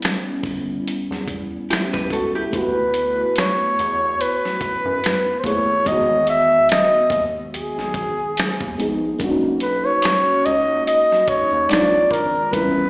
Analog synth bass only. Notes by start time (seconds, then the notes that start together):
0.44 G1
0.88 E2
1.11 E2
1.95 C#2
2.11 C#2
2.54 D2
3.61 E2
3.79 E2
4.61 F#2
4.85 F#2
5.45 D#2
5.87 E2
6.95 D#2
7.11 D#2
7.55 B1
7.77 B1
8.61 D#2
8.79 A#1
9.20 B1
10.27 C#2
10.46 C#2
11.28 D#2
11.52 D#2
11.71 A#1
12.11 G#1
12.54 A1